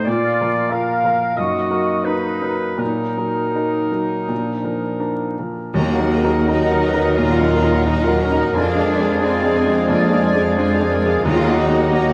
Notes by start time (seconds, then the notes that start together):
0.03 A#2 A#3 F4 D5
0.08 F4 D5
0.41 F3 A#4
0.70 A#3 F4 A#4 F5
1.04 F3 A#4
1.35 F#2 A#3 D#4 F#4 D#5
1.70 F#3 A#4
2.04 D#4 A#4 B4
2.42 F#3 A#4
2.77 A#2 F#3 D#4 A#4
3.17 F#3 A#4
3.55 D#4 A#4
3.92 F#3 A#4
4.28 A#2 F3 D4
4.63 F3 A#4
5.00 D4 A#4
5.39 F3 A#4
5.74 D#2 D#3 F#3 A#3 D#4 F#4 A#4 D#5 A#5
5.78 D#5
5.93 A#4 F#5
5.98 F#3 D#4 A#4
6.12 F#4 G#4 D#5 A#5
6.23 F#3 D#4 A#4
6.31 A#4 F#5
6.48 F#3 D#4 F#4 A#4 D#5 A#5
6.67 A#4 F#5
6.72 F#3 D#4 A#4
6.83 F#4 B4 D#5
6.88 A#5
6.93 F#3 D#4 A#4
7.00 A#4 F#5
7.15 A#2 F4 A#4 D#5
7.19 F#4 A#5
7.35 A#4 F#5
7.41 F#3 D#4 A#4
7.51 F#4 D#5 A#5
7.62 F#3 D#4 A#4
7.69 A#4 F#5
7.85 F#3 D#4 F#4 A#4 D#5 A#5
8.02 F4 A#4 F#5
8.07 F#3 D#4 A#4
8.18 F#4 A#5
8.22 C#4 D#5
8.31 F#3 D#4 A#4
8.36 D#4 A#4 F#5
8.53 F2 F3 G#3 D4 F4 G#4 D5 G#5
8.70 G#4 F5
8.75 G#3 D4 G#4
8.88 F4 D5 G#5
8.99 G#3 D4 G#4
9.04 G#4 F5
9.21 G#3 C4 D4 F4 G#4 D5 G#5
9.38 G#4 F5
9.43 G#3 D4 G#4
9.55 F4 C5 D5 G#5
9.66 G#3 D4 G#4
9.71 G#4 F5
9.88 F2 A#3 F4 D5 G#5
10.06 G#4 F5
10.12 G#3 D4 G#4
10.22 G#3 F4 D5 G#5
10.34 G#3 D4 G#4
10.40 G#4 F5
10.56 G#3 D4 F4 G#4 C5 D5 G#5
10.74 G#4 F5
10.80 G#3 D4 G#4
10.91 F4 A#4 D5 G#5
11.04 G#3 D4 G#4 F5
11.10 F5
11.24 D#2 D#3 F#3 A#3 D#4 F4 F#4 G#4 A#4 D#5 A#5
11.41 A#4 F#5
11.47 A#3 D#4 F#4
11.58 D#4 F#4 D#5 A#5
11.69 A#3 D#4 F#4
11.74 A#4 F#5
11.90 A#3 D#4 F#4 D#5 A#5
12.07 A#4 F#5